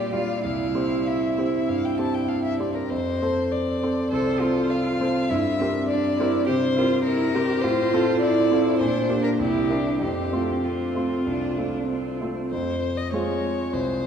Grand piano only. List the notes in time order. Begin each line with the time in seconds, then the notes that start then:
Already playing: A#2 G3 G4 D5
0.13 G3 G4 D5
0.44 C2
0.75 C4 G4 C5
1.38 C4 G4 C5
1.68 G2
1.99 C4 G4 C5
2.60 C4 G4 C5
2.91 F2
3.22 C4 A4 C5
3.83 C4 A4 C5
4.12 C2
4.42 C4 A4 C5
5.01 C4 A4 C5
5.30 G2
5.61 C4 G4 A#4
6.20 C4 G4 A#4
6.49 C3
6.78 C4 G4 A#4
7.36 C4 G4 A#4
7.64 A2
7.94 C4 F4 A4
8.51 C4 F4 A4
8.81 A#2
9.09 A#3 D4 G4
9.39 C2
9.69 A#3 D4 E4
10.00 F2
10.33 A3 C4 F4
10.95 A3 C4 F4
11.26 C2
11.58 A3 C4 F4
12.21 A3 C4 F4
12.52 F2
13.13 G#3 C4 F4
13.73 C2